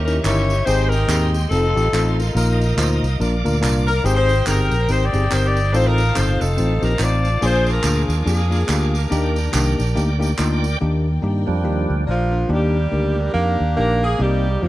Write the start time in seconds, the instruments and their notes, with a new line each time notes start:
Already playing: fingered electric bass D#2, tine electric piano D#3, saxophone section C#4 G4, tonewheel organ G4 D#5 E5 C#6
0.04 tine electric piano C#4 D#4 E4 A#4, saxophone section A#4, tambourine
0.21 fingered electric bass G1, tine electric piano C#4 D#4 E4, saxophone section E4 G4 C#5, clap, tambourine
0.26 tine electric piano A#4
0.50 tambourine
0.65 fingered electric bass G#1, tine electric piano G#2 C4 D#4 G4 G#4, tonewheel organ G#3 D#5 G5 C6, saxophone section D#4 G4 C5, tambourine
0.88 saxophone section D#4 G4 A#4, tambourine
1.08 fingered electric bass D#2, tine electric piano C4 D#4 G4 G#4, clap, tambourine
1.34 tambourine
1.49 fingered electric bass F1, tine electric piano C4 D#4 F4 A4, saxophone section C4 D#4 A4, tonewheel organ A4 D#5 F5, tambourine
1.75 fingered electric bass A1, tine electric piano C4 D#4 F4 G4, tambourine
1.93 fingered electric bass A1, tine electric piano C4 D#4 F4 A4, clap, tambourine
2.17 saxophone section D#4 F4 A#4, tambourine
2.35 fingered electric bass A#1, tine electric piano A#2 A#3 D#4 F4 A#4, tonewheel organ A#4 D#6, tambourine
2.61 tambourine
2.77 fingered electric bass D2, tine electric piano A#3 D#4 F4 C5, clap, tambourine
3.03 fingered electric bass C2, tambourine
3.19 fingered electric bass A#1, tine electric piano A#2 A#3 D4 F4 A#4, tonewheel organ A#4 D5 F5 D6, tambourine
3.45 fingered electric bass D2, tine electric piano A#3 D4 F4 A#4, tambourine
3.61 fingered electric bass C2, tine electric piano A#3 D4 F4 A#4, clap, tambourine
3.86 saxophone section A#4, tambourine
4.04 fingered electric bass G#1, tine electric piano G#2 C4 D#4 G4 G#4, saxophone section D#4 G4 C5, tonewheel organ C5 G5, tambourine
4.16 saxophone section D#4 G4 C5
4.29 tambourine
4.46 fingered electric bass G1, tine electric piano C4 D#4 G4 G#4, saxophone section D#4 G4 A#4, clap, tambourine
4.71 fingered electric bass A#1, tambourine
4.88 fingered electric bass G#1, tine electric piano C4 D#4 G4 A#4, saxophone section D#4 G4 C5, tambourine
5.03 saxophone section G4 D5
5.13 fingered electric bass G1, tine electric piano C4 D#4 G4 G#4, tambourine
5.31 fingered electric bass G1, tine electric piano C4 D#4 G4 A#4, saxophone section C5, clap, tambourine
5.45 saxophone section G4 D5
5.57 tambourine
5.73 fingered electric bass A1, tine electric piano A2 C4 D#4 F4 A4, saxophone section D#4 F4 C5, tonewheel organ F5 A5, tambourine
5.86 saxophone section D#4 F4 A#4
5.98 tambourine
6.15 fingered electric bass G1, tine electric piano C4 D#4 F4 A4, saxophone section C5, clap, tambourine
6.40 fingered electric bass F1, saxophone section C4 D#4 A4, tambourine
6.57 fingered electric bass A1, tine electric piano C4 D#4 F4 C5, tambourine
6.81 fingered electric bass A#1, tine electric piano C4 D#4 F4 G4, saxophone section A#4, tambourine
6.99 fingered electric bass A1, tine electric piano C4 D#4 F4 C5, saxophone section F4 D5, clap, tambourine
7.25 tambourine
7.41 fingered electric bass A#1, tine electric piano A#2 A#3 D4 F4 G#4, saxophone section F4 G#4 C5, tonewheel organ A#4 G#5 D6, tambourine
7.67 saxophone section D4 F4 A#4, tambourine
7.83 fingered electric bass D2, tine electric piano A#3 D4 F4 G#4, clap, tambourine
8.09 fingered electric bass D#2, tambourine
8.25 fingered electric bass F2, tine electric piano A#3 D4 F4 G#4, saxophone section D4 F4 G#4, tambourine
8.50 tine electric piano A#3 D4 F4 A#4, tambourine
8.67 fingered electric bass D2, tine electric piano A#3 D4 F4 G4, clap, tambourine
8.95 saxophone section D4 G4 A#4, tambourine
9.10 fingered electric bass D#2, tine electric piano D#3 A#3 D4 D#4 G4, tonewheel organ D5 G5, tambourine
9.36 tambourine
9.53 fingered electric bass C2, tine electric piano A#3 D4 D#4 G4, clap, tambourine
9.79 fingered electric bass A#1, tambourine
9.95 fingered electric bass D2, tine electric piano A#3 D4 D#4 G4, tambourine
10.19 tine electric piano A#3 D4 D#4 G4, tambourine
10.38 fingered electric bass D2, tine electric piano A#3 D4 D#4 F4, clap, tambourine
10.64 tambourine
10.80 fingered electric bass D#2, tine electric piano D#3 A#3 D4 D#4 G4, string section A#4 D5 G5
11.22 fingered electric bass G2, tine electric piano A#3 D4 D#4 G4
11.47 fingered electric bass F2, tonewheel organ F3 G3 D4
11.64 fingered electric bass D#2, tine electric piano A#3 D4 D#4 G4
11.90 fingered electric bass D2
12.07 fingered electric bass A#1, tenor saxophone F3, saxophone section A#3 D4 F4, tine electric piano F4 D5
12.32 tine electric piano D4 A#4
12.49 fingered electric bass D#2, tine electric piano D#3 A#3 D4 D#4 G4, tenor saxophone G3, saxophone section A#3 D4
12.53 saxophone section G4
12.91 fingered electric bass D2, tine electric piano A#3 D4 D#4 A#4
13.18 saxophone section D4 G4 A#4
13.33 fingered electric bass F2, tine electric piano A#3 D4 D#4 G4, tenor saxophone A#3
13.61 fingered electric bass D#2
13.77 fingered electric bass A#1, tine electric piano A#3 D4 D#4 G4, tenor saxophone A#3, saxophone section A#4
14.04 saxophone section G#4
14.19 fingered electric bass C2, tine electric piano C3 A#3 C4 D#4 G4, tenor saxophone G3, saxophone section A#3 D#4 G4
14.62 fingered electric bass F2, tenor saxophone F3, tine electric piano A#3 C4 D#4 F4, saxophone section A#3 F4